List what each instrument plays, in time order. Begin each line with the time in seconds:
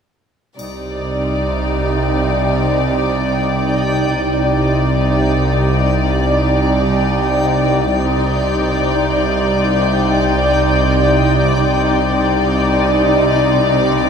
0.57 double bass section C2, synth drone C2, cello section C3, viola section G3 D#4, synth texture D#4 D5 G5, violin section D5, triangle
4.26 synth drone C2, double bass section C2, cello section C3, viola section G3 D#4, synth texture D#4 D5 G5, violin section D5
7.96 synth drone C2, double bass section C2, cello section C3, viola section G3 D#4, synth texture D#4 D5 G5, violin section D5 C6 G6
8.88 violin section D6
11.65 synth drone C2, double bass section C2, cello section C3, viola section G3 D#4, synth texture D#4 D5 G5, violin section D5